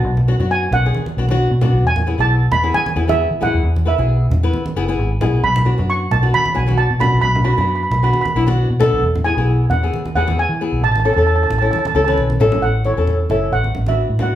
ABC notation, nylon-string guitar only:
X:1
M:4/4
L:1/16
Q:"Swing 16ths" 1/4=134
K:Bdor
V:1 name="Nylon-string guitar"
z2 [B,DF] [B,DF]2 z2 [B,DG]2 z [B,DF] [B,DF]2 z [B,DF]2 | z2 [B,EG] [B,EG]2 z2 [B,EG]2 z [B,EG] [B,EG]2 z [B,EG]2 | z2 [B,EB] [B,EG]2 z2 [B,EB]2 z [B,EG] [B,EG]2 z [B,EG]2 | z2 [B,DF] [B,DF]2 z2 [B,DF]2 z [B,DF] [B,DF]2 z [B,DF]2 |
z2 [B,DF] [B,DF]2 z2 [B,DF]2 z [B,DE] [B,DF]2 z [B,DA]2 | z2 [B,EG] [B,EG]2 z2 [B,EG]2 z [B,EG] [B,EG]2 z [B,EG]2 | z2 [CEA] [CEA]2 z2 [CEA]2 z [CEA] [CEB]2 z [CEA]2 | z2 [CEA] [CEA]2 z [CEA]2 z3 [B,DF]2 z [B,DF]2 |]